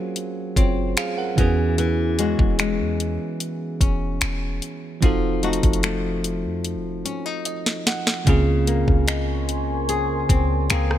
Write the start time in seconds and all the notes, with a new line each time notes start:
Already playing: F#3 A#3 C4 C#4 F4 G#4 A#4 C5
0.16 closed hi-hat
0.56 F#1 C4 F4 C#5, kick, closed hi-hat
0.97 G#4 F5, finger snap, closed hi-hat
1.18 A#4 F#5
1.36 E2 E3 B3 C#4 F#4, kick, closed hi-hat
1.40 G#4
1.78 E3, closed hi-hat
2.19 G#3 C#4 F#4, closed hi-hat
2.39 E1, kick
2.59 G#3, finger snap, closed hi-hat
2.80 E2
3.00 closed hi-hat
3.40 closed hi-hat
3.81 E1 C#4, kick, closed hi-hat
4.21 E1, finger snap, closed hi-hat
4.62 closed hi-hat
5.01 F1 F3 C4 D#4 F#4, kick, closed hi-hat
5.05 A4
5.43 A3 D#4 F#4, closed hi-hat
5.53 closed hi-hat
5.63 F1, kick, closed hi-hat
5.73 closed hi-hat
5.83 A3, finger snap, closed hi-hat
6.24 closed hi-hat
6.45 F2
6.64 closed hi-hat
6.75 F1
7.05 C#4, closed hi-hat
7.26 D#4
7.45 D#5, closed hi-hat
7.66 snare
7.87 F#5, snare, closed hi-hat
8.07 snare
8.25 C#2 C#3 A#3 C4 F4 A#4 G#5 C6 C#6, kick, closed hi-hat
8.30 G#4
8.67 A#3, closed hi-hat
8.88 C#2, kick
9.08 D#5, finger snap, closed hi-hat
9.49 closed hi-hat
9.89 G#4, closed hi-hat
10.29 C#2 C4, kick, closed hi-hat
10.70 C#2 A#3 C4 G#4, finger snap, closed hi-hat
10.91 cross-stick